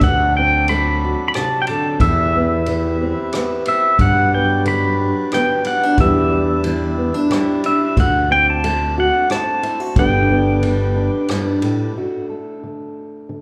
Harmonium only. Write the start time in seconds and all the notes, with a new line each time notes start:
Already playing: D4 D5
0.02 F#3 A4
1.99 G3 E4 B4 E5
4.00 F#3 D4 B4 D5
6.00 E4 D5
7.97 A3 C5
9.98 G3 B4